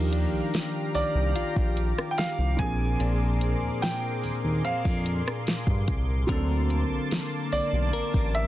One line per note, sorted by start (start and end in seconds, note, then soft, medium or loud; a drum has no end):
0.00 0.26 D#2 loud
0.00 2.67 D#3 medium
0.00 2.54 F3 medium
0.00 2.55 A#3 medium
0.00 0.12 D4 medium
0.00 2.55 D4 medium
0.00 2.56 D#4 medium
0.00 1.35 F4 medium
0.00 2.56 G4 medium
0.00 2.57 G4 medium
0.00 2.56 F5 medium
0.00 2.56 A#5 medium
0.00 6.25 D6 medium
0.12 3.01 D4 medium
0.12 closed hi-hat medium
0.33 0.41 C2 soft
0.54 snare loud
0.54 closed hi-hat medium
0.95 1.03 C2 soft
0.95 2.15 D5 medium
0.95 open hi-hat medium
1.15 1.33 C2 medium
1.36 1.44 A#1 soft
1.36 3.00 F4 medium
1.36 closed hi-hat medium
1.56 1.93 A#1 medium
1.56 kick medium
1.77 closed hi-hat medium
1.98 cross-stick loud
2.11 2.18 G5 medium
2.18 2.56 F5 loud
2.18 snare loud
2.18 closed hi-hat medium
2.38 2.57 C2 medium
2.57 2.95 A#1 loud
2.57 2.99 A#2 medium
2.57 5.83 F3 medium
2.57 5.83 A#3 medium
2.57 5.84 C4 medium
2.57 6.25 G#4 medium
2.57 6.25 A#4 medium
2.57 3.78 G#5 loud
2.57 8.47 C6 medium
2.57 kick loud
2.57 closed hi-hat medium
2.61 5.85 D4 medium
2.61 5.85 G#4 medium
3.00 3.55 A#1 loud
3.00 6.29 A#2 medium
3.00 4.64 D4 medium
3.00 closed hi-hat medium
3.41 4.64 C4 medium
3.41 closed hi-hat medium
3.62 3.70 D#2 soft
3.82 4.67 G5 loud
3.82 snare loud
3.82 closed hi-hat medium
4.23 4.32 D#2 medium
4.23 open hi-hat medium
4.44 4.62 D#2 medium
4.64 4.73 F2 medium
4.64 4.85 C4 medium
4.64 5.84 F5 medium
4.64 closed hi-hat medium
4.85 5.22 F2 medium
4.85 6.37 D4 medium
4.85 kick loud
5.06 closed hi-hat medium
5.28 cross-stick loud
5.47 snare loud
5.47 closed hi-hat medium
5.67 5.85 G2 loud
5.67 kick medium
5.88 6.24 C2 medium
5.88 kick loud
5.88 closed hi-hat medium
6.27 6.84 D2 loud
6.27 8.47 D3 medium
6.27 8.47 F#3 medium
6.27 8.47 A#3 medium
6.27 8.47 C4 medium
6.27 8.47 D4 medium
6.27 7.93 A#4 medium
6.27 8.47 A5 medium
6.27 8.47 D6 loud
6.27 kick loud
6.27 closed hi-hat medium
6.32 8.47 A4 medium
6.70 closed hi-hat medium
6.91 6.99 B1 medium
7.11 snare loud
7.11 closed hi-hat medium
7.52 7.61 B1 medium
7.52 8.37 D5 loud
7.52 open hi-hat medium
7.73 7.91 B1 medium
7.93 8.02 A1 soft
7.93 8.47 A#4 medium
7.93 closed hi-hat medium
8.14 8.47 A1 medium
8.14 kick medium
8.35 8.47 E5 medium
8.35 closed hi-hat medium